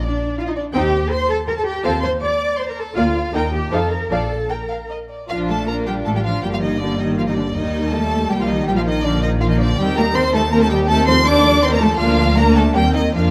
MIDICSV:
0, 0, Header, 1, 6, 480
1, 0, Start_track
1, 0, Key_signature, -2, "major"
1, 0, Tempo, 369231
1, 965, Time_signature, 3, 2, 24, 8
1, 4331, Tempo, 389610
1, 7691, Tempo, 370828
1, 15371, Tempo, 387097
1, 17000, End_track
2, 0, Start_track
2, 0, Title_t, "Violin section"
2, 0, Program_c, 0, 48
2, 4, Note_on_c, 0, 74, 71
2, 485, Note_off_c, 0, 74, 0
2, 486, Note_on_c, 0, 77, 77
2, 534, Note_off_c, 0, 77, 0
2, 603, Note_on_c, 0, 75, 59
2, 652, Note_off_c, 0, 75, 0
2, 727, Note_on_c, 0, 74, 68
2, 822, Note_off_c, 0, 74, 0
2, 961, Note_on_c, 0, 79, 80
2, 1427, Note_off_c, 0, 79, 0
2, 1436, Note_on_c, 0, 84, 88
2, 1670, Note_off_c, 0, 84, 0
2, 1676, Note_on_c, 0, 81, 72
2, 1916, Note_off_c, 0, 81, 0
2, 1916, Note_on_c, 0, 82, 79
2, 2028, Note_on_c, 0, 81, 73
2, 2034, Note_off_c, 0, 82, 0
2, 2150, Note_off_c, 0, 81, 0
2, 2153, Note_on_c, 0, 79, 77
2, 2390, Note_on_c, 0, 81, 88
2, 2391, Note_off_c, 0, 79, 0
2, 2627, Note_on_c, 0, 84, 82
2, 2631, Note_off_c, 0, 81, 0
2, 2726, Note_off_c, 0, 84, 0
2, 2872, Note_on_c, 0, 86, 85
2, 3351, Note_off_c, 0, 86, 0
2, 3362, Note_on_c, 0, 84, 64
2, 3475, Note_on_c, 0, 82, 65
2, 3485, Note_off_c, 0, 84, 0
2, 3599, Note_off_c, 0, 82, 0
2, 3601, Note_on_c, 0, 81, 69
2, 3844, Note_on_c, 0, 77, 76
2, 3845, Note_off_c, 0, 81, 0
2, 4328, Note_on_c, 0, 82, 69
2, 4330, Note_off_c, 0, 77, 0
2, 4551, Note_on_c, 0, 79, 61
2, 4563, Note_off_c, 0, 82, 0
2, 4794, Note_on_c, 0, 81, 67
2, 4796, Note_off_c, 0, 79, 0
2, 5026, Note_on_c, 0, 82, 60
2, 5034, Note_off_c, 0, 81, 0
2, 5277, Note_off_c, 0, 82, 0
2, 5277, Note_on_c, 0, 81, 67
2, 5764, Note_off_c, 0, 81, 0
2, 5764, Note_on_c, 0, 82, 55
2, 6263, Note_off_c, 0, 82, 0
2, 6745, Note_on_c, 0, 77, 91
2, 6842, Note_off_c, 0, 77, 0
2, 6990, Note_on_c, 0, 81, 86
2, 7219, Note_on_c, 0, 82, 88
2, 7221, Note_off_c, 0, 81, 0
2, 7314, Note_off_c, 0, 82, 0
2, 7453, Note_on_c, 0, 79, 74
2, 7547, Note_off_c, 0, 79, 0
2, 7686, Note_on_c, 0, 81, 90
2, 7736, Note_off_c, 0, 81, 0
2, 7821, Note_on_c, 0, 79, 71
2, 7868, Note_off_c, 0, 79, 0
2, 7925, Note_on_c, 0, 77, 85
2, 8167, Note_off_c, 0, 77, 0
2, 8173, Note_on_c, 0, 79, 98
2, 8222, Note_off_c, 0, 79, 0
2, 8307, Note_on_c, 0, 77, 77
2, 8354, Note_off_c, 0, 77, 0
2, 8410, Note_on_c, 0, 75, 80
2, 8651, Note_off_c, 0, 75, 0
2, 8652, Note_on_c, 0, 74, 89
2, 8885, Note_on_c, 0, 75, 74
2, 8899, Note_off_c, 0, 74, 0
2, 9136, Note_on_c, 0, 77, 93
2, 9138, Note_off_c, 0, 75, 0
2, 9188, Note_off_c, 0, 77, 0
2, 9271, Note_on_c, 0, 75, 64
2, 9376, Note_on_c, 0, 74, 81
2, 9390, Note_off_c, 0, 75, 0
2, 9614, Note_on_c, 0, 75, 89
2, 9626, Note_off_c, 0, 74, 0
2, 10103, Note_off_c, 0, 75, 0
2, 10107, Note_on_c, 0, 81, 101
2, 10592, Note_on_c, 0, 79, 86
2, 10593, Note_off_c, 0, 81, 0
2, 10714, Note_off_c, 0, 79, 0
2, 10725, Note_on_c, 0, 77, 84
2, 10832, Note_on_c, 0, 75, 91
2, 10840, Note_off_c, 0, 77, 0
2, 11073, Note_off_c, 0, 75, 0
2, 11077, Note_on_c, 0, 79, 96
2, 11124, Note_off_c, 0, 79, 0
2, 11199, Note_on_c, 0, 77, 73
2, 11246, Note_off_c, 0, 77, 0
2, 11315, Note_on_c, 0, 75, 99
2, 11551, Note_off_c, 0, 75, 0
2, 11556, Note_on_c, 0, 74, 100
2, 11782, Note_on_c, 0, 75, 84
2, 11798, Note_off_c, 0, 74, 0
2, 11881, Note_off_c, 0, 75, 0
2, 12030, Note_on_c, 0, 77, 93
2, 12079, Note_off_c, 0, 77, 0
2, 12161, Note_on_c, 0, 75, 87
2, 12265, Note_on_c, 0, 74, 103
2, 12276, Note_off_c, 0, 75, 0
2, 12503, Note_off_c, 0, 74, 0
2, 12514, Note_on_c, 0, 79, 113
2, 12753, Note_off_c, 0, 79, 0
2, 12754, Note_on_c, 0, 82, 117
2, 12990, Note_off_c, 0, 82, 0
2, 13003, Note_on_c, 0, 84, 111
2, 13230, Note_off_c, 0, 84, 0
2, 13241, Note_on_c, 0, 81, 104
2, 13462, Note_off_c, 0, 81, 0
2, 13478, Note_on_c, 0, 82, 118
2, 13586, Note_off_c, 0, 82, 0
2, 13590, Note_on_c, 0, 81, 106
2, 13700, Note_off_c, 0, 81, 0
2, 13702, Note_on_c, 0, 79, 112
2, 13797, Note_off_c, 0, 79, 0
2, 13942, Note_on_c, 0, 81, 121
2, 14173, Note_off_c, 0, 81, 0
2, 14181, Note_on_c, 0, 84, 127
2, 14413, Note_off_c, 0, 84, 0
2, 14431, Note_on_c, 0, 86, 127
2, 14895, Note_on_c, 0, 84, 114
2, 14901, Note_off_c, 0, 86, 0
2, 15013, Note_off_c, 0, 84, 0
2, 15038, Note_on_c, 0, 82, 102
2, 15141, Note_on_c, 0, 81, 113
2, 15143, Note_off_c, 0, 82, 0
2, 15373, Note_on_c, 0, 77, 115
2, 15376, Note_off_c, 0, 81, 0
2, 15827, Note_off_c, 0, 77, 0
2, 15833, Note_on_c, 0, 82, 116
2, 16072, Note_off_c, 0, 82, 0
2, 16075, Note_on_c, 0, 81, 99
2, 16313, Note_on_c, 0, 79, 113
2, 16315, Note_off_c, 0, 81, 0
2, 16548, Note_on_c, 0, 75, 97
2, 16552, Note_off_c, 0, 79, 0
2, 16794, Note_off_c, 0, 75, 0
2, 16796, Note_on_c, 0, 77, 95
2, 17000, Note_off_c, 0, 77, 0
2, 17000, End_track
3, 0, Start_track
3, 0, Title_t, "Violin section"
3, 0, Program_c, 1, 48
3, 955, Note_on_c, 1, 79, 70
3, 958, Note_on_c, 1, 72, 65
3, 1181, Note_off_c, 1, 79, 0
3, 1183, Note_off_c, 1, 72, 0
3, 2391, Note_on_c, 1, 77, 68
3, 2392, Note_on_c, 1, 72, 66
3, 2619, Note_off_c, 1, 77, 0
3, 2620, Note_off_c, 1, 72, 0
3, 3847, Note_on_c, 1, 77, 62
3, 3848, Note_on_c, 1, 74, 60
3, 4071, Note_off_c, 1, 77, 0
3, 4072, Note_off_c, 1, 74, 0
3, 4338, Note_on_c, 1, 75, 57
3, 4341, Note_on_c, 1, 79, 61
3, 4552, Note_off_c, 1, 75, 0
3, 4554, Note_off_c, 1, 79, 0
3, 4805, Note_on_c, 1, 72, 55
3, 4808, Note_on_c, 1, 77, 55
3, 5028, Note_off_c, 1, 72, 0
3, 5029, Note_off_c, 1, 77, 0
3, 5276, Note_on_c, 1, 74, 49
3, 5278, Note_on_c, 1, 77, 54
3, 5508, Note_off_c, 1, 74, 0
3, 5510, Note_off_c, 1, 77, 0
3, 5762, Note_on_c, 1, 79, 70
3, 5861, Note_off_c, 1, 79, 0
3, 6010, Note_on_c, 1, 77, 46
3, 6108, Note_off_c, 1, 77, 0
3, 6258, Note_on_c, 1, 75, 57
3, 6356, Note_off_c, 1, 75, 0
3, 6507, Note_on_c, 1, 74, 50
3, 6742, Note_on_c, 1, 65, 81
3, 6747, Note_off_c, 1, 74, 0
3, 6968, Note_off_c, 1, 65, 0
3, 6984, Note_on_c, 1, 69, 74
3, 7223, Note_off_c, 1, 69, 0
3, 7224, Note_on_c, 1, 70, 81
3, 7459, Note_off_c, 1, 70, 0
3, 7460, Note_on_c, 1, 67, 64
3, 7553, Note_off_c, 1, 67, 0
3, 7677, Note_on_c, 1, 69, 76
3, 7803, Note_off_c, 1, 69, 0
3, 7811, Note_on_c, 1, 67, 65
3, 7931, Note_off_c, 1, 67, 0
3, 7939, Note_on_c, 1, 65, 71
3, 8170, Note_on_c, 1, 67, 77
3, 8175, Note_off_c, 1, 65, 0
3, 8294, Note_on_c, 1, 65, 64
3, 8295, Note_off_c, 1, 67, 0
3, 8417, Note_off_c, 1, 65, 0
3, 8420, Note_on_c, 1, 63, 65
3, 8654, Note_on_c, 1, 62, 69
3, 8656, Note_off_c, 1, 63, 0
3, 8894, Note_off_c, 1, 62, 0
3, 8895, Note_on_c, 1, 63, 63
3, 8994, Note_off_c, 1, 63, 0
3, 9134, Note_on_c, 1, 65, 75
3, 9260, Note_off_c, 1, 65, 0
3, 9267, Note_on_c, 1, 63, 57
3, 9316, Note_off_c, 1, 63, 0
3, 9388, Note_on_c, 1, 62, 70
3, 9486, Note_off_c, 1, 62, 0
3, 9620, Note_on_c, 1, 63, 81
3, 10089, Note_on_c, 1, 69, 91
3, 10096, Note_off_c, 1, 63, 0
3, 10581, Note_on_c, 1, 67, 68
3, 10584, Note_off_c, 1, 69, 0
3, 10703, Note_on_c, 1, 65, 75
3, 10708, Note_off_c, 1, 67, 0
3, 10754, Note_off_c, 1, 65, 0
3, 10823, Note_on_c, 1, 63, 73
3, 11061, Note_on_c, 1, 67, 92
3, 11063, Note_off_c, 1, 63, 0
3, 11180, Note_on_c, 1, 65, 55
3, 11188, Note_off_c, 1, 67, 0
3, 11297, Note_on_c, 1, 63, 76
3, 11305, Note_off_c, 1, 65, 0
3, 11539, Note_on_c, 1, 62, 81
3, 11546, Note_off_c, 1, 63, 0
3, 11789, Note_off_c, 1, 62, 0
3, 11799, Note_on_c, 1, 63, 81
3, 11895, Note_off_c, 1, 63, 0
3, 12031, Note_on_c, 1, 65, 83
3, 12152, Note_off_c, 1, 65, 0
3, 12165, Note_on_c, 1, 63, 76
3, 12211, Note_off_c, 1, 63, 0
3, 12277, Note_on_c, 1, 62, 75
3, 12372, Note_off_c, 1, 62, 0
3, 12521, Note_on_c, 1, 67, 97
3, 12751, Note_off_c, 1, 67, 0
3, 12756, Note_on_c, 1, 70, 84
3, 12988, Note_on_c, 1, 72, 109
3, 12991, Note_off_c, 1, 70, 0
3, 13218, Note_off_c, 1, 72, 0
3, 13226, Note_on_c, 1, 69, 94
3, 13452, Note_on_c, 1, 70, 99
3, 13459, Note_off_c, 1, 69, 0
3, 13564, Note_on_c, 1, 69, 89
3, 13571, Note_off_c, 1, 70, 0
3, 13687, Note_on_c, 1, 67, 97
3, 13689, Note_off_c, 1, 69, 0
3, 13924, Note_on_c, 1, 69, 115
3, 13931, Note_off_c, 1, 67, 0
3, 14169, Note_off_c, 1, 69, 0
3, 14177, Note_on_c, 1, 72, 91
3, 14273, Note_off_c, 1, 72, 0
3, 14414, Note_on_c, 1, 74, 120
3, 14883, Note_off_c, 1, 74, 0
3, 14906, Note_on_c, 1, 72, 92
3, 15019, Note_off_c, 1, 72, 0
3, 15026, Note_on_c, 1, 70, 92
3, 15139, Note_off_c, 1, 70, 0
3, 15143, Note_on_c, 1, 69, 92
3, 15377, Note_off_c, 1, 69, 0
3, 15379, Note_on_c, 1, 65, 98
3, 15840, Note_off_c, 1, 65, 0
3, 15840, Note_on_c, 1, 70, 100
3, 15934, Note_off_c, 1, 70, 0
3, 16077, Note_on_c, 1, 69, 93
3, 16173, Note_off_c, 1, 69, 0
3, 16292, Note_on_c, 1, 67, 90
3, 16391, Note_off_c, 1, 67, 0
3, 16547, Note_on_c, 1, 63, 78
3, 16647, Note_off_c, 1, 63, 0
3, 16793, Note_on_c, 1, 65, 81
3, 17000, Note_off_c, 1, 65, 0
3, 17000, End_track
4, 0, Start_track
4, 0, Title_t, "Viola section"
4, 0, Program_c, 2, 48
4, 963, Note_on_c, 2, 63, 66
4, 966, Note_on_c, 2, 60, 71
4, 1185, Note_off_c, 2, 63, 0
4, 1187, Note_off_c, 2, 60, 0
4, 2384, Note_on_c, 2, 60, 67
4, 2387, Note_on_c, 2, 65, 61
4, 2615, Note_off_c, 2, 60, 0
4, 2617, Note_off_c, 2, 65, 0
4, 3847, Note_on_c, 2, 65, 58
4, 3849, Note_on_c, 2, 58, 66
4, 4071, Note_off_c, 2, 65, 0
4, 4072, Note_off_c, 2, 58, 0
4, 4330, Note_on_c, 2, 63, 61
4, 4332, Note_on_c, 2, 58, 60
4, 4548, Note_off_c, 2, 63, 0
4, 4549, Note_off_c, 2, 58, 0
4, 4803, Note_on_c, 2, 63, 57
4, 4804, Note_on_c, 2, 53, 55
4, 5027, Note_off_c, 2, 53, 0
4, 5027, Note_off_c, 2, 63, 0
4, 5285, Note_on_c, 2, 62, 47
4, 5289, Note_on_c, 2, 53, 53
4, 5513, Note_off_c, 2, 62, 0
4, 5516, Note_off_c, 2, 53, 0
4, 6748, Note_on_c, 2, 62, 60
4, 6749, Note_on_c, 2, 65, 62
4, 7190, Note_off_c, 2, 62, 0
4, 7191, Note_off_c, 2, 65, 0
4, 7226, Note_on_c, 2, 65, 57
4, 7228, Note_on_c, 2, 62, 58
4, 8157, Note_off_c, 2, 65, 0
4, 8159, Note_off_c, 2, 62, 0
4, 8172, Note_on_c, 2, 58, 66
4, 8177, Note_on_c, 2, 55, 57
4, 8644, Note_off_c, 2, 58, 0
4, 8645, Note_off_c, 2, 55, 0
4, 8659, Note_on_c, 2, 58, 68
4, 8661, Note_on_c, 2, 55, 65
4, 9613, Note_off_c, 2, 58, 0
4, 9614, Note_off_c, 2, 55, 0
4, 9628, Note_on_c, 2, 55, 63
4, 9630, Note_on_c, 2, 58, 66
4, 10573, Note_off_c, 2, 55, 0
4, 10574, Note_off_c, 2, 58, 0
4, 10594, Note_on_c, 2, 55, 72
4, 10594, Note_on_c, 2, 58, 69
4, 11052, Note_off_c, 2, 58, 0
4, 11064, Note_off_c, 2, 55, 0
4, 11067, Note_on_c, 2, 58, 66
4, 11069, Note_on_c, 2, 53, 72
4, 11542, Note_off_c, 2, 58, 0
4, 11543, Note_off_c, 2, 53, 0
4, 11559, Note_on_c, 2, 58, 69
4, 11560, Note_on_c, 2, 53, 68
4, 12022, Note_off_c, 2, 53, 0
4, 12023, Note_off_c, 2, 58, 0
4, 12037, Note_on_c, 2, 53, 79
4, 12039, Note_on_c, 2, 58, 74
4, 12504, Note_off_c, 2, 53, 0
4, 12505, Note_off_c, 2, 58, 0
4, 12518, Note_on_c, 2, 60, 73
4, 12521, Note_on_c, 2, 51, 71
4, 12738, Note_off_c, 2, 60, 0
4, 12740, Note_off_c, 2, 51, 0
4, 12754, Note_on_c, 2, 63, 68
4, 12756, Note_on_c, 2, 55, 71
4, 12990, Note_off_c, 2, 63, 0
4, 12991, Note_off_c, 2, 55, 0
4, 13002, Note_on_c, 2, 60, 69
4, 13003, Note_on_c, 2, 51, 71
4, 13229, Note_off_c, 2, 60, 0
4, 13230, Note_off_c, 2, 51, 0
4, 13233, Note_on_c, 2, 63, 68
4, 13235, Note_on_c, 2, 55, 67
4, 13463, Note_off_c, 2, 55, 0
4, 13463, Note_off_c, 2, 63, 0
4, 13471, Note_on_c, 2, 51, 75
4, 13473, Note_on_c, 2, 60, 72
4, 13686, Note_off_c, 2, 51, 0
4, 13687, Note_off_c, 2, 60, 0
4, 13708, Note_on_c, 2, 55, 70
4, 13708, Note_on_c, 2, 63, 68
4, 13941, Note_off_c, 2, 55, 0
4, 13941, Note_off_c, 2, 63, 0
4, 13952, Note_on_c, 2, 51, 78
4, 13952, Note_on_c, 2, 60, 80
4, 14167, Note_off_c, 2, 51, 0
4, 14167, Note_off_c, 2, 60, 0
4, 14181, Note_on_c, 2, 57, 72
4, 14184, Note_on_c, 2, 53, 71
4, 14418, Note_off_c, 2, 57, 0
4, 14419, Note_off_c, 2, 53, 0
4, 14421, Note_on_c, 2, 60, 79
4, 14425, Note_on_c, 2, 51, 75
4, 14651, Note_on_c, 2, 53, 75
4, 14652, Note_on_c, 2, 57, 71
4, 14657, Note_off_c, 2, 60, 0
4, 14659, Note_off_c, 2, 51, 0
4, 14881, Note_on_c, 2, 60, 75
4, 14882, Note_on_c, 2, 51, 83
4, 14891, Note_off_c, 2, 53, 0
4, 14892, Note_off_c, 2, 57, 0
4, 15109, Note_off_c, 2, 51, 0
4, 15109, Note_off_c, 2, 60, 0
4, 15131, Note_on_c, 2, 53, 77
4, 15132, Note_on_c, 2, 57, 76
4, 15367, Note_on_c, 2, 62, 85
4, 15369, Note_on_c, 2, 58, 83
4, 15371, Note_off_c, 2, 53, 0
4, 15371, Note_off_c, 2, 57, 0
4, 15801, Note_off_c, 2, 62, 0
4, 15802, Note_off_c, 2, 58, 0
4, 15825, Note_on_c, 2, 62, 76
4, 15830, Note_on_c, 2, 58, 85
4, 16297, Note_off_c, 2, 58, 0
4, 16299, Note_off_c, 2, 62, 0
4, 16308, Note_on_c, 2, 60, 80
4, 16311, Note_on_c, 2, 58, 79
4, 16787, Note_off_c, 2, 58, 0
4, 16799, Note_on_c, 2, 62, 70
4, 16801, Note_off_c, 2, 60, 0
4, 16802, Note_on_c, 2, 58, 69
4, 17000, Note_off_c, 2, 58, 0
4, 17000, Note_off_c, 2, 62, 0
4, 17000, End_track
5, 0, Start_track
5, 0, Title_t, "Cello section"
5, 0, Program_c, 3, 48
5, 17, Note_on_c, 3, 62, 77
5, 482, Note_off_c, 3, 62, 0
5, 493, Note_on_c, 3, 65, 91
5, 610, Note_off_c, 3, 65, 0
5, 619, Note_on_c, 3, 63, 81
5, 729, Note_on_c, 3, 62, 81
5, 732, Note_off_c, 3, 63, 0
5, 823, Note_off_c, 3, 62, 0
5, 967, Note_on_c, 3, 67, 97
5, 1431, Note_off_c, 3, 67, 0
5, 1440, Note_on_c, 3, 72, 102
5, 1675, Note_on_c, 3, 69, 93
5, 1677, Note_off_c, 3, 72, 0
5, 1772, Note_off_c, 3, 69, 0
5, 1918, Note_on_c, 3, 70, 91
5, 1966, Note_off_c, 3, 70, 0
5, 2047, Note_on_c, 3, 69, 89
5, 2150, Note_on_c, 3, 67, 80
5, 2160, Note_off_c, 3, 69, 0
5, 2389, Note_off_c, 3, 67, 0
5, 2393, Note_on_c, 3, 69, 98
5, 2490, Note_off_c, 3, 69, 0
5, 2636, Note_on_c, 3, 72, 94
5, 2734, Note_off_c, 3, 72, 0
5, 2879, Note_on_c, 3, 74, 93
5, 3355, Note_off_c, 3, 74, 0
5, 3363, Note_on_c, 3, 72, 74
5, 3485, Note_off_c, 3, 72, 0
5, 3494, Note_on_c, 3, 70, 79
5, 3605, Note_on_c, 3, 69, 80
5, 3611, Note_off_c, 3, 70, 0
5, 3847, Note_off_c, 3, 69, 0
5, 3848, Note_on_c, 3, 65, 78
5, 4322, Note_off_c, 3, 65, 0
5, 4336, Note_on_c, 3, 70, 84
5, 4429, Note_off_c, 3, 70, 0
5, 4568, Note_on_c, 3, 67, 79
5, 4799, Note_off_c, 3, 67, 0
5, 4802, Note_on_c, 3, 69, 78
5, 5042, Note_on_c, 3, 70, 73
5, 5043, Note_off_c, 3, 69, 0
5, 5285, Note_off_c, 3, 70, 0
5, 5289, Note_on_c, 3, 69, 79
5, 5780, Note_off_c, 3, 69, 0
5, 5781, Note_on_c, 3, 70, 63
5, 6272, Note_off_c, 3, 70, 0
5, 6752, Note_on_c, 3, 53, 75
5, 6973, Note_off_c, 3, 53, 0
5, 6992, Note_on_c, 3, 57, 74
5, 7227, Note_off_c, 3, 57, 0
5, 7227, Note_on_c, 3, 58, 75
5, 7460, Note_off_c, 3, 58, 0
5, 7461, Note_on_c, 3, 55, 72
5, 7554, Note_off_c, 3, 55, 0
5, 7692, Note_on_c, 3, 57, 78
5, 7741, Note_off_c, 3, 57, 0
5, 7813, Note_on_c, 3, 55, 70
5, 7932, Note_off_c, 3, 55, 0
5, 7934, Note_on_c, 3, 53, 70
5, 8170, Note_on_c, 3, 55, 77
5, 8172, Note_off_c, 3, 53, 0
5, 8220, Note_off_c, 3, 55, 0
5, 8294, Note_on_c, 3, 53, 69
5, 8415, Note_off_c, 3, 53, 0
5, 8416, Note_on_c, 3, 51, 78
5, 8657, Note_on_c, 3, 50, 77
5, 8659, Note_off_c, 3, 51, 0
5, 8896, Note_off_c, 3, 50, 0
5, 8899, Note_on_c, 3, 51, 76
5, 9141, Note_off_c, 3, 51, 0
5, 9147, Note_on_c, 3, 53, 83
5, 9270, Note_off_c, 3, 53, 0
5, 9274, Note_on_c, 3, 51, 59
5, 9322, Note_off_c, 3, 51, 0
5, 9393, Note_on_c, 3, 50, 69
5, 9489, Note_off_c, 3, 50, 0
5, 9639, Note_on_c, 3, 51, 80
5, 10106, Note_off_c, 3, 51, 0
5, 10110, Note_on_c, 3, 57, 90
5, 10591, Note_on_c, 3, 55, 72
5, 10594, Note_off_c, 3, 57, 0
5, 10713, Note_off_c, 3, 55, 0
5, 10717, Note_on_c, 3, 53, 75
5, 10831, Note_on_c, 3, 51, 76
5, 10836, Note_off_c, 3, 53, 0
5, 11070, Note_on_c, 3, 55, 99
5, 11073, Note_off_c, 3, 51, 0
5, 11190, Note_on_c, 3, 53, 67
5, 11192, Note_off_c, 3, 55, 0
5, 11311, Note_on_c, 3, 51, 83
5, 11312, Note_off_c, 3, 53, 0
5, 11553, Note_off_c, 3, 51, 0
5, 11555, Note_on_c, 3, 50, 80
5, 11797, Note_off_c, 3, 50, 0
5, 11797, Note_on_c, 3, 51, 86
5, 12036, Note_on_c, 3, 53, 90
5, 12038, Note_off_c, 3, 51, 0
5, 12157, Note_off_c, 3, 53, 0
5, 12158, Note_on_c, 3, 51, 82
5, 12277, Note_off_c, 3, 51, 0
5, 12278, Note_on_c, 3, 50, 81
5, 12514, Note_on_c, 3, 55, 97
5, 12515, Note_off_c, 3, 50, 0
5, 12609, Note_off_c, 3, 55, 0
5, 12754, Note_on_c, 3, 58, 102
5, 12848, Note_off_c, 3, 58, 0
5, 12995, Note_on_c, 3, 60, 105
5, 13087, Note_off_c, 3, 60, 0
5, 13227, Note_on_c, 3, 57, 99
5, 13320, Note_off_c, 3, 57, 0
5, 13464, Note_on_c, 3, 58, 102
5, 13577, Note_off_c, 3, 58, 0
5, 13585, Note_on_c, 3, 57, 89
5, 13700, Note_off_c, 3, 57, 0
5, 13704, Note_on_c, 3, 55, 91
5, 13798, Note_off_c, 3, 55, 0
5, 13942, Note_on_c, 3, 57, 110
5, 14173, Note_off_c, 3, 57, 0
5, 14184, Note_on_c, 3, 60, 105
5, 14414, Note_off_c, 3, 60, 0
5, 14419, Note_on_c, 3, 62, 114
5, 14885, Note_off_c, 3, 62, 0
5, 14894, Note_on_c, 3, 60, 97
5, 15013, Note_off_c, 3, 60, 0
5, 15015, Note_on_c, 3, 58, 104
5, 15062, Note_off_c, 3, 58, 0
5, 15133, Note_on_c, 3, 57, 90
5, 15229, Note_off_c, 3, 57, 0
5, 15372, Note_on_c, 3, 53, 96
5, 15827, Note_off_c, 3, 53, 0
5, 15834, Note_on_c, 3, 58, 107
5, 16070, Note_on_c, 3, 57, 98
5, 16073, Note_off_c, 3, 58, 0
5, 16310, Note_on_c, 3, 55, 97
5, 16312, Note_off_c, 3, 57, 0
5, 16408, Note_off_c, 3, 55, 0
5, 16555, Note_on_c, 3, 51, 83
5, 16798, Note_off_c, 3, 51, 0
5, 16799, Note_on_c, 3, 53, 80
5, 17000, Note_off_c, 3, 53, 0
5, 17000, End_track
6, 0, Start_track
6, 0, Title_t, "Double bass section"
6, 0, Program_c, 4, 48
6, 960, Note_on_c, 4, 39, 74
6, 1358, Note_off_c, 4, 39, 0
6, 2388, Note_on_c, 4, 39, 73
6, 2796, Note_off_c, 4, 39, 0
6, 3843, Note_on_c, 4, 38, 64
6, 4248, Note_off_c, 4, 38, 0
6, 4327, Note_on_c, 4, 39, 68
6, 4721, Note_off_c, 4, 39, 0
6, 4798, Note_on_c, 4, 41, 60
6, 5203, Note_off_c, 4, 41, 0
6, 5284, Note_on_c, 4, 34, 59
6, 5694, Note_off_c, 4, 34, 0
6, 6750, Note_on_c, 4, 34, 67
6, 7640, Note_off_c, 4, 34, 0
6, 7691, Note_on_c, 4, 33, 64
6, 8173, Note_on_c, 4, 31, 65
6, 8177, Note_off_c, 4, 33, 0
6, 9602, Note_off_c, 4, 31, 0
6, 9628, Note_on_c, 4, 39, 65
6, 10592, Note_on_c, 4, 36, 71
6, 10593, Note_off_c, 4, 39, 0
6, 11073, Note_off_c, 4, 36, 0
6, 11073, Note_on_c, 4, 34, 77
6, 12484, Note_off_c, 4, 34, 0
6, 12513, Note_on_c, 4, 39, 88
6, 15319, Note_off_c, 4, 39, 0
6, 15368, Note_on_c, 4, 38, 89
6, 16263, Note_off_c, 4, 38, 0
6, 16312, Note_on_c, 4, 39, 82
6, 16803, Note_off_c, 4, 39, 0
6, 16803, Note_on_c, 4, 41, 76
6, 17000, Note_off_c, 4, 41, 0
6, 17000, End_track
0, 0, End_of_file